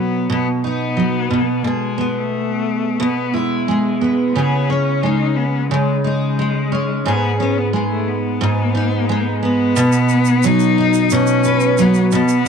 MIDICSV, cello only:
0, 0, Header, 1, 2, 480
1, 0, Start_track
1, 0, Tempo, 674916
1, 1176, Time_signature, 4, 2, 24, 8
1, 8876, End_track
2, 0, Start_track
2, 0, Title_t, "Cello"
2, 0, Program_c, 0, 42
2, 0, Note_on_c, 0, 59, 61
2, 207, Note_off_c, 0, 59, 0
2, 230, Note_on_c, 0, 59, 81
2, 335, Note_off_c, 0, 59, 0
2, 467, Note_on_c, 0, 59, 79
2, 1190, Note_on_c, 0, 56, 75
2, 1201, Note_off_c, 0, 59, 0
2, 1550, Note_on_c, 0, 57, 78
2, 1561, Note_off_c, 0, 56, 0
2, 2142, Note_on_c, 0, 59, 79
2, 2152, Note_off_c, 0, 57, 0
2, 2383, Note_on_c, 0, 56, 75
2, 2394, Note_off_c, 0, 59, 0
2, 3090, Note_off_c, 0, 56, 0
2, 3095, Note_on_c, 0, 59, 80
2, 3340, Note_on_c, 0, 61, 74
2, 3351, Note_off_c, 0, 59, 0
2, 3578, Note_on_c, 0, 63, 77
2, 3589, Note_off_c, 0, 61, 0
2, 3816, Note_on_c, 0, 59, 69
2, 3827, Note_off_c, 0, 63, 0
2, 4052, Note_off_c, 0, 59, 0
2, 4056, Note_on_c, 0, 56, 80
2, 4280, Note_off_c, 0, 56, 0
2, 4302, Note_on_c, 0, 56, 70
2, 4991, Note_off_c, 0, 56, 0
2, 5028, Note_on_c, 0, 59, 84
2, 5247, Note_off_c, 0, 59, 0
2, 5264, Note_on_c, 0, 61, 71
2, 5392, Note_on_c, 0, 59, 64
2, 5403, Note_off_c, 0, 61, 0
2, 5500, Note_off_c, 0, 59, 0
2, 5504, Note_on_c, 0, 56, 69
2, 5613, Note_off_c, 0, 56, 0
2, 5625, Note_on_c, 0, 57, 66
2, 5742, Note_on_c, 0, 59, 63
2, 5752, Note_off_c, 0, 57, 0
2, 6700, Note_off_c, 0, 59, 0
2, 6717, Note_on_c, 0, 59, 83
2, 7435, Note_on_c, 0, 63, 105
2, 7446, Note_off_c, 0, 59, 0
2, 7910, Note_on_c, 0, 61, 103
2, 7921, Note_off_c, 0, 63, 0
2, 8395, Note_on_c, 0, 59, 90
2, 8406, Note_off_c, 0, 61, 0
2, 8615, Note_off_c, 0, 59, 0
2, 8619, Note_on_c, 0, 59, 89
2, 8876, Note_off_c, 0, 59, 0
2, 8876, End_track
0, 0, End_of_file